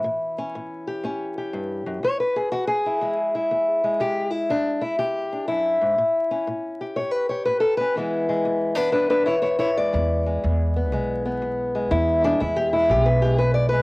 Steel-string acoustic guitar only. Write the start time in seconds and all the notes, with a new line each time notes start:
Already playing: E3 E4
0.04 A2
0.38 C#4
0.55 A2
0.87 G4
1.03 A2 C#4
1.38 G4
1.53 G2
1.86 F#2
2.03 E2 C#5
2.20 B4
2.36 G#4
2.52 E2 F#4
2.67 G#4
2.86 E4
3.01 E2 G#3
3.35 E4
3.51 E2
3.84 G#3
4.00 E2 G4
4.31 E4
4.49 E2 D4
4.81 E4
4.99 E2 G4
5.33 D4
5.48 F#2 E4
5.81 G#2
5.98 A2
6.31 C#4
6.47 A2
6.81 G4
6.96 A2 C#5
7.11 B4
7.29 G4 C#5
7.45 A2 B4
7.60 A4
7.77 C#4 B4
7.96 E2 E3 G#3 B3 E4
8.29 G#3
8.45 E2
8.75 B3 D4 B4
8.92 E2 D4 B4
9.10 D4 B4
9.26 E4 C#5
9.42 E2 E4 C#5
9.59 E4 C#5
9.77 G#3 D5
9.93 E2
10.26 G#3
10.44 E2
10.76 B3
10.92 E2 G#3
11.25 B3
11.42 E2
11.75 G#3
11.91 E2 E4
12.24 G#3 D4
12.40 E2 E4
12.56 G4
12.73 G#3 E4
12.90 E2 G4
13.05 B4
13.22 G#3 G4
13.38 E2 B4
13.54 D5
13.69 G#3 B4